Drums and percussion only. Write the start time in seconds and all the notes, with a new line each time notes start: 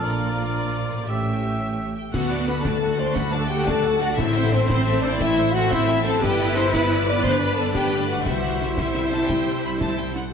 2.14 concert bass drum, snare, crash
2.48 snare
2.65 concert bass drum, snare
3.16 concert bass drum, snare
3.68 concert bass drum, snare
4.19 concert bass drum, snare
4.53 snare
4.70 concert bass drum, snare
4.87 snare
5.04 snare
5.21 concert bass drum, snare
5.72 concert bass drum, snare
6.06 snare
6.23 concert bass drum, snare
6.56 snare
6.73 concert bass drum, snare
7.24 concert bass drum, snare
7.75 concert bass drum, snare
8.26 concert bass drum, snare
8.61 snare
8.78 concert bass drum, snare
8.95 snare
9.12 snare
9.29 concert bass drum, snare
9.81 concert bass drum, snare
10.16 snare